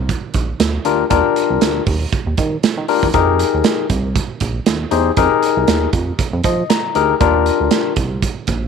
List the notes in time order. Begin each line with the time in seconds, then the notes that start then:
Already playing: C2
0.09 kick, closed hi-hat
0.34 A#1, kick, closed hi-hat
0.60 D2, snare, closed hi-hat
0.85 D2 D4 F4 G4 A#4, closed hi-hat
1.10 D#2 D4 F4 G4 A#4, kick, closed hi-hat
1.36 closed hi-hat
1.50 C2
1.61 D2, snare, closed hi-hat
1.86 D#2, kick, open hi-hat
2.13 kick, closed hi-hat
2.27 D#2
2.37 D#3, kick, closed hi-hat
2.63 snare, closed hi-hat
2.77 D#3
2.88 D4 F4 G4 A#4, open hi-hat
3.03 E2, kick
3.14 F2 D#4 G4 G#4 A#4, kick, closed hi-hat
3.39 closed hi-hat
3.54 D#2
3.64 snare, closed hi-hat
3.90 C2, kick, closed hi-hat
4.16 kick, closed hi-hat
4.40 A#1, kick, closed hi-hat
4.66 D#2, snare, closed hi-hat
4.91 E2 D#4 G4 G#4 C5, closed hi-hat
5.17 F2 D#4 G4 G#4 A#4, kick, closed hi-hat
5.43 closed hi-hat
5.57 C2
5.68 D#2, snare, closed hi-hat
5.93 F2, kick, closed hi-hat
6.19 kick, closed hi-hat
6.33 F2
6.44 F3 D#5, kick, closed hi-hat
6.70 A#5, snare, closed hi-hat
6.95 D2 D#4 G4 G#4 A#4, closed hi-hat
7.20 D#2 D4 F4 G4 A#4, kick, closed hi-hat
7.46 closed hi-hat
7.60 D2
7.71 snare, closed hi-hat
7.96 C2, kick, closed hi-hat
8.22 kick, closed hi-hat
8.47 A#1, kick, closed hi-hat